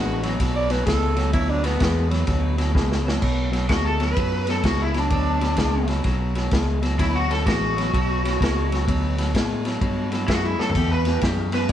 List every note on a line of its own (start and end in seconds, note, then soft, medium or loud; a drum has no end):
0.00 0.38 A1 medium
0.00 0.20 B2 medium
0.00 0.21 G#3 medium
0.00 0.30 B3 medium
0.00 0.30 D4 medium
0.00 0.30 F#4 loud
0.23 0.38 B2 medium
0.23 0.38 F#3 medium
0.23 snare soft
0.23 ride medium
0.40 0.85 B1 medium
0.40 0.68 B2 medium
0.40 0.68 F#3 medium
0.40 kick medium
0.40 snare soft
0.40 ride medium
0.56 0.73 D5 medium
0.70 0.85 B2 medium
0.70 0.85 F#3 medium
0.70 0.86 B4 medium
0.70 snare soft
0.70 ride medium
0.86 1.32 C#2 loud
0.86 1.14 B2 medium
0.86 1.14 G#3 medium
0.86 1.32 A4 loud
0.86 kick medium
0.86 snare loud
0.86 ride medium
1.16 1.32 B2 medium
1.16 1.32 F#3 medium
1.16 snare soft
1.16 ride medium
1.33 1.80 D2 medium
1.33 1.61 B2 medium
1.33 1.61 F#3 medium
1.33 1.52 E4 medium
1.33 kick medium
1.33 ride medium
1.50 1.65 D4 medium
1.63 1.78 B2 medium
1.63 1.79 F#3 medium
1.63 2.11 B3 medium
1.63 snare soft
1.63 ride medium
1.79 2.27 E2 medium
1.79 2.08 B2 medium
1.79 2.08 G#3 loud
1.79 kick medium
1.79 snare loud
1.79 ride medium
2.10 2.26 B2 medium
2.10 2.26 F#3 medium
2.10 snare soft
2.10 ride medium
2.27 2.74 D2 medium
2.27 2.55 B2 medium
2.27 2.56 F#3 medium
2.27 kick medium
2.27 snare soft
2.27 ride medium
2.58 2.73 B2 medium
2.58 2.73 F#3 medium
2.58 snare soft
2.58 ride medium
2.75 3.21 C#2 medium
2.75 3.02 B2 medium
2.75 3.03 G#3 medium
2.75 kick medium
2.75 snare medium
2.92 snare medium
3.04 3.20 B2 medium
3.04 3.20 F#3 medium
3.08 snare medium
3.21 3.68 B1 medium
3.21 3.49 B2 medium
3.21 3.49 F#3 medium
3.21 kick medium
3.21 crash medium
3.52 3.67 B2 medium
3.52 3.68 F#3 medium
3.52 snare soft
3.52 ride medium
3.68 4.15 D2 medium
3.68 3.96 B2 medium
3.68 3.97 G#3 medium
3.68 3.85 F#4 medium
3.68 kick medium
3.68 snare loud
3.68 ride medium
3.86 4.01 A4 medium
4.00 4.15 B2 medium
4.00 4.15 F#3 medium
4.00 4.48 B4 medium
4.00 snare soft
4.00 ride medium
4.17 4.62 F#2 medium
4.17 4.44 B2 medium
4.17 4.44 F#3 medium
4.17 kick medium
4.17 ride medium
4.47 4.63 B2 medium
4.47 4.63 F#3 medium
4.47 4.66 A4 medium
4.47 snare soft
4.47 ride medium
4.63 5.09 C#2 medium
4.63 4.92 B2 medium
4.63 4.92 G#3 medium
4.63 4.80 F#4 medium
4.63 kick medium
4.63 snare loud
4.63 ride medium
4.82 4.98 E4 medium
4.94 5.10 B2 medium
4.94 5.10 F#3 medium
4.94 5.88 D4 medium
4.94 snare soft
4.94 ride medium
5.10 5.57 D2 medium
5.10 5.39 B2 medium
5.10 5.39 F#3 medium
5.10 kick medium
5.10 ride medium
5.41 5.57 B2 medium
5.41 5.57 F#3 medium
5.41 snare soft
5.41 ride medium
5.57 6.03 C#2 medium
5.57 5.86 B2 medium
5.57 5.86 G#3 loud
5.57 kick medium
5.57 snare loud
5.57 ride medium
5.88 6.04 B2 medium
5.88 6.04 F#3 medium
5.88 snare soft
5.88 ride medium
6.04 6.51 B1 medium
6.04 6.33 B2 medium
6.04 6.33 F#3 medium
6.04 kick medium
6.04 snare soft
6.04 ride medium
6.35 6.51 B2 medium
6.35 6.51 F#3 medium
6.35 snare soft
6.35 ride medium
6.51 6.98 C#2 medium
6.51 6.80 B2 medium
6.51 6.80 G#3 medium
6.51 kick medium
6.51 snare loud
6.51 ride medium
6.82 6.97 B2 medium
6.82 6.98 F#3 medium
6.82 snare soft
6.82 ride medium
6.99 7.45 D2 medium
6.99 7.26 B2 medium
6.99 7.27 F#3 medium
6.99 7.15 E4 medium
6.99 kick medium
6.99 snare soft
6.99 ride medium
7.15 7.30 F#4 medium
7.29 7.44 B2 medium
7.29 7.45 F#3 medium
7.29 7.46 A4 medium
7.29 snare soft
7.29 ride medium
7.46 7.92 A1 medium
7.46 7.73 B2 medium
7.46 7.74 G#3 loud
7.46 8.83 F#4 medium
7.46 kick medium
7.46 snare loud
7.46 ride medium
7.77 7.92 B2 medium
7.77 7.92 F#3 medium
7.77 snare soft
7.77 ride medium
7.94 8.39 B1 medium
7.94 8.21 B2 medium
7.94 8.21 F#3 medium
7.94 kick medium
7.94 ride medium
8.25 8.39 B2 medium
8.25 8.39 F#3 medium
8.25 snare soft
8.25 ride medium
8.41 8.86 C#2 medium
8.41 8.68 B2 medium
8.41 8.69 G#3 medium
8.41 kick medium
8.41 snare loud
8.41 ride medium
8.71 8.86 B2 medium
8.71 8.86 F#3 medium
8.71 snare soft
8.71 ride medium
8.88 9.33 D2 medium
8.88 9.15 B2 medium
8.88 9.15 F#3 medium
8.88 kick medium
8.88 ride medium
9.18 9.33 B2 medium
9.18 9.33 F#3 medium
9.18 snare soft
9.18 ride medium
9.34 9.80 A2 medium
9.34 9.62 B2 medium
9.34 9.62 G#3 medium
9.34 kick medium
9.34 snare loud
9.34 ride medium
9.65 9.80 B2 medium
9.65 9.80 F#3 medium
9.65 snare soft
9.65 ride medium
9.81 10.27 G2 medium
9.81 10.09 B2 medium
9.81 10.09 F#3 medium
9.81 kick medium
9.81 ride medium
10.12 10.27 B2 medium
10.12 10.27 F#3 medium
10.12 snare soft
10.12 ride medium
10.28 10.57 F#2 medium
10.28 10.56 B2 medium
10.28 10.56 G#3 medium
10.28 10.44 F#4 medium
10.28 kick medium
10.28 snare loud
10.28 ride medium
10.44 10.60 E4 medium
10.59 10.74 B2 medium
10.59 10.74 F#3 medium
10.59 10.90 A4 medium
10.59 muted fingered electric bass stroke soft
10.59 snare medium
10.70 floor tom medium
10.75 11.21 E2 medium
10.75 11.04 E2 medium
10.75 11.04 B2 medium
10.75 10.94 B3 medium
10.75 10.94 E4 medium
10.75 10.94 G4 medium
10.75 kick medium
10.75 ride medium
10.75 splash medium
10.92 11.17 B4 medium
11.05 11.21 E2 medium
11.05 11.21 B2 medium
11.05 11.60 B3 medium
11.05 11.60 E4 medium
11.05 11.60 G4 medium
11.05 snare soft
11.05 ride medium
11.21 11.50 E2 medium
11.21 11.68 F#2 medium
11.21 11.50 C#3 medium
11.21 kick medium
11.21 snare loud
11.21 ride medium
11.52 11.68 E2 medium
11.52 11.68 B2 medium
11.52 11.70 B4 loud
11.52 snare soft
11.52 ride medium
11.69 ride medium